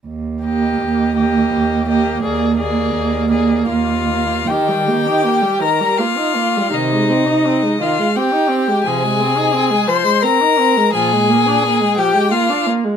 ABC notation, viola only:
X:1
M:3/4
L:1/16
Q:1/4=84
K:Eb
V:1 name="Viola"
z2 B,4 B,4 B,2 | B,2 B,4 B,4 B,2 | E, G, B, E B, G, E, G, B, E B, G, | E, A, C E C A, E, A, C E C A, |
F, A, C E C A, F, A, C E C A, | F, A, B, D B, A, F, A, B, D B, A, |]